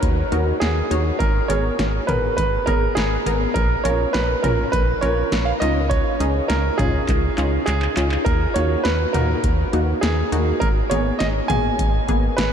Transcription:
Already playing: A#4
0.03 D#2, kick, closed hi-hat
0.32 D#2 D#4 F#4 A#4, closed hi-hat
0.60 D#2 G#4, snare, closed hi-hat
0.91 D#2 D#4 F#4 C#5, closed hi-hat
1.19 G#1 A#4, kick, closed hi-hat
1.48 G#1 B3 G#4 A#4 C#5, closed hi-hat
1.79 G#1, snare, closed hi-hat
2.07 G#1 B3 G#4 A#4 B4, kick, closed hi-hat, mid tom
2.37 G#1 B4, kick, closed hi-hat
2.66 G#1 B3 G#4 A#4, kick, closed hi-hat
2.95 G#1 G#4, snare, closed hi-hat
3.26 G#1 B3 G#4 A#4, closed hi-hat
3.54 A#1 A#4, kick, closed hi-hat
3.84 A#1 C#4 F4 A#4 C#5, closed hi-hat
4.13 A#1 B4, snare, closed hi-hat
4.43 A#1 C#4 F4 A#4, closed hi-hat, mid tom
4.72 A#1 B4, kick, closed hi-hat
5.01 A#1 C#4 F4 A#4 C#5, closed hi-hat
5.32 A#1, snare, closed hi-hat
5.45 F5
5.60 C#2 C#4 D#4 F4 D#5, closed hi-hat
5.90 C#5, kick, closed hi-hat
6.20 C#2 C#4 D#4 G#4, closed hi-hat
6.48 C#2 A#4, snare, closed hi-hat
6.78 C#2 C#4 D#4 F4 G#4, kick, closed hi-hat, mid tom
7.09 C#2, kick, clap, closed hi-hat
7.38 C#2 C#4 D#4 F4, clap, closed hi-hat
7.66 C#2 G#4, clap, closed hi-hat
7.82 clap
7.97 C#2 C#4 D#4 F4, clap, closed hi-hat
8.12 clap
8.25 D#2 A#4, kick, closed hi-hat
8.54 D#2 A#3 D#4 F#4 C#5, closed hi-hat
8.84 D#2 B4, snare, closed hi-hat
9.13 D#2 A#3 D#4 F#4 A#4, closed hi-hat, mid tom
9.44 D#2, kick, closed hi-hat
9.73 D#2 A#3 D#4 F#4, closed hi-hat
10.01 D#2 G#4, snare, closed hi-hat
10.32 D#2 A#3 D#4 F#4, closed hi-hat
10.60 G#1 A#4, kick, closed hi-hat
10.90 G#1 A#3 B3 G#4 C#5, closed hi-hat
11.19 G#1 D#5, snare, closed hi-hat
11.48 G#1 A#3 B3 G#4 G#5, kick, closed hi-hat, mid tom
11.79 G#1, kick, closed hi-hat
12.09 G#1 A#3 B3 G#4, kick, closed hi-hat
12.37 G#1 B4, snare, closed hi-hat

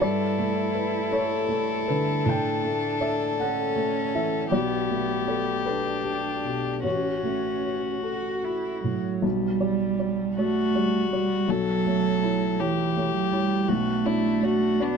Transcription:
0.01 G2 E4 A4 D5
0.38 A3
0.75 B4
1.11 A4 C#5
1.49 A3
1.88 D3 B4
2.25 A2 D4 G5
2.64 A3
3.01 D5 E5
3.40 C#4 A4 F#5
3.76 A3
4.15 E3 E5
4.52 B1 B3 G4 D5
4.90 A3
5.27 A4 D5
5.65 D4 A4 B4
6.04 G4
6.45 B2
6.83 A1 C#4 F#4 C#5
7.23 A3
7.64 C#5
8.03 F#4 A4
8.43 E4 F#4
8.84 A2 F#3
9.22 B1 G3
9.60 G3 D5
9.99 F#4 D5
10.37 A3 F#4 D5
10.75 G3 D5
11.11 G3 F#4 D5
11.48 B1 F#3 A4
11.85 A3 C#5
12.23 E4 C#5
12.59 E3 E4 G4 C#5
12.96 A3 C#5
13.15 F#3
13.32 G3 E4 C#5
13.68 B1 A3 F#4
14.05 D4 E4 D5
14.43 F#4 D5
14.80 B3 D4 F#4 D5

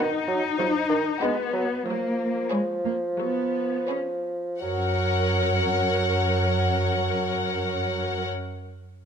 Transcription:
Already playing: D#3 D#4 B4 F#5
0.00 F#4
0.28 F#3
0.58 F3 F#3
0.89 D#3
1.21 G#3 B3 F#4 B4 F#5
1.53 F#3
1.85 F3 F#3 A#3
2.50 G#3 G#4 B4 C#5
2.86 A#3
3.19 F#3 B3
3.88 C#4 G#4 B4 C#5
4.61 F#2 F#3 A#4 C#5 F#5

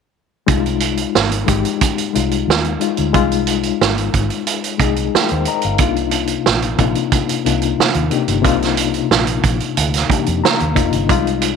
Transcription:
0.47 C2 G#3 D#4 F4, kick, closed hi-hat
0.66 closed hi-hat
0.80 closed hi-hat
0.97 closed hi-hat
1.15 G#1, snare
1.31 closed hi-hat
1.46 G#1 G#3 D#4 G4, kick, closed hi-hat
1.65 closed hi-hat
1.81 kick, closed hi-hat
1.98 closed hi-hat
2.13 C2 G#3 D#4 F4, closed hi-hat
2.31 closed hi-hat
2.48 D#2, snare
2.65 closed hi-hat
2.80 G#3 D#4 F4, closed hi-hat
2.97 D2, closed hi-hat
3.13 C2 G#3 D#4 F4, kick, closed hi-hat
3.32 closed hi-hat
3.47 closed hi-hat
3.63 closed hi-hat
3.81 G#1, snare
3.98 closed hi-hat
4.14 G#1, kick, closed hi-hat
4.30 closed hi-hat
4.47 closed hi-hat
4.64 closed hi-hat
4.78 C2 G#3 D#4 G#4 D#5, kick, closed hi-hat
4.96 closed hi-hat
5.14 A#4 G5, muted fingered electric bass stroke, snare
5.29 D#2 C5, closed hi-hat
5.45 D#5 A#5, closed hi-hat
5.62 G1 F5, closed hi-hat
5.78 C2 C3 A#3 D4 D#4 F4, kick, closed hi-hat
5.96 closed hi-hat
6.11 closed hi-hat
6.27 closed hi-hat
6.46 A#1, snare
6.62 closed hi-hat
6.78 A#1 C3 A#3 D4 D#4 F4, kick, closed hi-hat
6.95 closed hi-hat
7.12 kick, closed hi-hat
7.29 closed hi-hat
7.45 C2 C3 A#3 D4 D#4 F4, closed hi-hat
7.62 closed hi-hat
7.79 muted fingered electric bass stroke, snare
7.94 D#2, closed hi-hat
8.10 C3 A#3 D4 D#4 G4, closed hi-hat
8.28 G1, closed hi-hat
8.42 C2 C3 A#3 D4 D#4 F4, kick, closed hi-hat
8.62 snare, closed hi-hat
8.77 closed hi-hat
8.94 closed hi-hat
9.11 A#1, snare
9.27 closed hi-hat
9.44 A#1, kick, closed hi-hat
9.60 closed hi-hat
9.77 D2, closed hi-hat
9.94 snare, closed hi-hat
10.09 C3 A#3 D4 D#4 G4, muted fingered electric bass stroke, kick, closed hi-hat
10.26 F2, closed hi-hat
10.44 A#5, snare
10.60 D#2, closed hi-hat
10.75 F1 C3 A#3 D4 D#4 F4 D#5, kick, closed hi-hat
10.93 G1, closed hi-hat
11.09 C2 G#3 D#4 F4, kick, closed hi-hat
11.27 closed hi-hat
11.42 closed hi-hat

